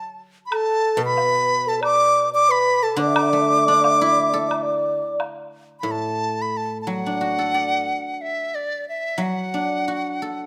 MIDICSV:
0, 0, Header, 1, 5, 480
1, 0, Start_track
1, 0, Tempo, 660066
1, 379, Time_signature, 4, 2, 24, 8
1, 2783, Tempo, 677966
1, 5183, Tempo, 665927
1, 7524, End_track
2, 0, Start_track
2, 0, Title_t, "Dizi"
2, 0, Program_c, 0, 73
2, 0, Note_on_c, 0, 81, 89
2, 147, Note_off_c, 0, 81, 0
2, 336, Note_on_c, 0, 83, 66
2, 402, Note_on_c, 0, 81, 90
2, 413, Note_off_c, 0, 83, 0
2, 746, Note_off_c, 0, 81, 0
2, 764, Note_on_c, 0, 83, 103
2, 1226, Note_on_c, 0, 81, 97
2, 1237, Note_off_c, 0, 83, 0
2, 1332, Note_off_c, 0, 81, 0
2, 1336, Note_on_c, 0, 86, 116
2, 1671, Note_off_c, 0, 86, 0
2, 1706, Note_on_c, 0, 86, 110
2, 1826, Note_on_c, 0, 83, 100
2, 1837, Note_off_c, 0, 86, 0
2, 2059, Note_on_c, 0, 81, 93
2, 2070, Note_off_c, 0, 83, 0
2, 2175, Note_on_c, 0, 86, 106
2, 2186, Note_off_c, 0, 81, 0
2, 3739, Note_off_c, 0, 86, 0
2, 4180, Note_on_c, 0, 83, 72
2, 4259, Note_on_c, 0, 81, 85
2, 4270, Note_off_c, 0, 83, 0
2, 4617, Note_on_c, 0, 83, 77
2, 4628, Note_off_c, 0, 81, 0
2, 4725, Note_on_c, 0, 81, 76
2, 4736, Note_off_c, 0, 83, 0
2, 4894, Note_off_c, 0, 81, 0
2, 4898, Note_on_c, 0, 81, 56
2, 4952, Note_on_c, 0, 78, 81
2, 4962, Note_off_c, 0, 81, 0
2, 5848, Note_off_c, 0, 78, 0
2, 5848, Note_on_c, 0, 78, 50
2, 5901, Note_on_c, 0, 76, 72
2, 5912, Note_off_c, 0, 78, 0
2, 6143, Note_on_c, 0, 74, 71
2, 6154, Note_off_c, 0, 76, 0
2, 6384, Note_off_c, 0, 74, 0
2, 6388, Note_on_c, 0, 76, 77
2, 6631, Note_on_c, 0, 78, 77
2, 6642, Note_off_c, 0, 76, 0
2, 7524, Note_off_c, 0, 78, 0
2, 7524, End_track
3, 0, Start_track
3, 0, Title_t, "Xiao"
3, 0, Program_c, 1, 77
3, 377, Note_on_c, 1, 69, 82
3, 739, Note_on_c, 1, 71, 87
3, 750, Note_off_c, 1, 69, 0
3, 1214, Note_on_c, 1, 69, 84
3, 1225, Note_off_c, 1, 71, 0
3, 1317, Note_on_c, 1, 74, 98
3, 1328, Note_off_c, 1, 69, 0
3, 1687, Note_off_c, 1, 74, 0
3, 1693, Note_on_c, 1, 74, 81
3, 1810, Note_on_c, 1, 71, 87
3, 1821, Note_off_c, 1, 74, 0
3, 2057, Note_on_c, 1, 69, 83
3, 2068, Note_off_c, 1, 71, 0
3, 2180, Note_on_c, 1, 74, 72
3, 2191, Note_off_c, 1, 69, 0
3, 2236, Note_on_c, 1, 76, 75
3, 2247, Note_off_c, 1, 74, 0
3, 2300, Note_on_c, 1, 74, 74
3, 2311, Note_off_c, 1, 76, 0
3, 2347, Note_on_c, 1, 76, 75
3, 2357, Note_off_c, 1, 74, 0
3, 2398, Note_on_c, 1, 74, 78
3, 2409, Note_off_c, 1, 76, 0
3, 2484, Note_on_c, 1, 76, 66
3, 2495, Note_off_c, 1, 74, 0
3, 2545, Note_on_c, 1, 74, 70
3, 2556, Note_off_c, 1, 76, 0
3, 2606, Note_on_c, 1, 76, 73
3, 2617, Note_off_c, 1, 74, 0
3, 2659, Note_on_c, 1, 74, 72
3, 2670, Note_off_c, 1, 76, 0
3, 2719, Note_on_c, 1, 76, 70
3, 2730, Note_off_c, 1, 74, 0
3, 2771, Note_on_c, 1, 74, 71
3, 2782, Note_off_c, 1, 76, 0
3, 2837, Note_on_c, 1, 76, 76
3, 2848, Note_off_c, 1, 74, 0
3, 2888, Note_on_c, 1, 74, 73
3, 2898, Note_off_c, 1, 76, 0
3, 2935, Note_on_c, 1, 76, 71
3, 2946, Note_off_c, 1, 74, 0
3, 2994, Note_on_c, 1, 74, 71
3, 3005, Note_off_c, 1, 76, 0
3, 3046, Note_on_c, 1, 76, 71
3, 3057, Note_off_c, 1, 74, 0
3, 3116, Note_on_c, 1, 74, 72
3, 3126, Note_off_c, 1, 76, 0
3, 3182, Note_on_c, 1, 76, 69
3, 3193, Note_off_c, 1, 74, 0
3, 3247, Note_on_c, 1, 74, 72
3, 3258, Note_off_c, 1, 76, 0
3, 3288, Note_on_c, 1, 76, 76
3, 3298, Note_off_c, 1, 74, 0
3, 3349, Note_on_c, 1, 74, 89
3, 3360, Note_off_c, 1, 76, 0
3, 3754, Note_off_c, 1, 74, 0
3, 7524, End_track
4, 0, Start_track
4, 0, Title_t, "Guzheng"
4, 0, Program_c, 2, 107
4, 0, Note_on_c, 2, 54, 65
4, 250, Note_off_c, 2, 54, 0
4, 705, Note_on_c, 2, 47, 68
4, 2156, Note_on_c, 2, 50, 66
4, 2164, Note_off_c, 2, 47, 0
4, 2420, Note_on_c, 2, 57, 47
4, 2677, Note_on_c, 2, 62, 52
4, 2915, Note_on_c, 2, 64, 56
4, 3143, Note_on_c, 2, 69, 52
4, 3376, Note_off_c, 2, 57, 0
4, 3607, Note_off_c, 2, 50, 0
4, 3625, Note_off_c, 2, 62, 0
4, 3870, Note_off_c, 2, 64, 0
4, 4109, Note_off_c, 2, 69, 0
4, 4203, Note_on_c, 2, 45, 50
4, 4937, Note_on_c, 2, 54, 47
4, 5074, Note_on_c, 2, 62, 36
4, 5177, Note_on_c, 2, 66, 40
4, 5305, Note_on_c, 2, 69, 41
4, 5418, Note_on_c, 2, 74, 41
4, 5651, Note_off_c, 2, 45, 0
4, 6029, Note_off_c, 2, 62, 0
4, 6141, Note_off_c, 2, 66, 0
4, 6265, Note_off_c, 2, 69, 0
4, 6381, Note_off_c, 2, 54, 0
4, 6382, Note_off_c, 2, 74, 0
4, 6596, Note_on_c, 2, 54, 57
4, 6856, Note_on_c, 2, 62, 39
4, 7100, Note_on_c, 2, 66, 41
4, 7347, Note_on_c, 2, 69, 42
4, 7524, Note_off_c, 2, 54, 0
4, 7524, Note_off_c, 2, 62, 0
4, 7524, Note_off_c, 2, 66, 0
4, 7524, Note_off_c, 2, 69, 0
4, 7524, End_track
5, 0, Start_track
5, 0, Title_t, "Drums"
5, 378, Note_on_c, 9, 76, 60
5, 451, Note_off_c, 9, 76, 0
5, 852, Note_on_c, 9, 77, 46
5, 925, Note_off_c, 9, 77, 0
5, 1328, Note_on_c, 9, 76, 56
5, 1401, Note_off_c, 9, 76, 0
5, 2297, Note_on_c, 9, 76, 77
5, 2370, Note_off_c, 9, 76, 0
5, 2793, Note_on_c, 9, 77, 50
5, 2864, Note_off_c, 9, 77, 0
5, 3267, Note_on_c, 9, 76, 55
5, 3338, Note_off_c, 9, 76, 0
5, 3754, Note_on_c, 9, 76, 46
5, 3754, Note_on_c, 9, 77, 44
5, 3825, Note_off_c, 9, 76, 0
5, 3825, Note_off_c, 9, 77, 0
5, 7524, End_track
0, 0, End_of_file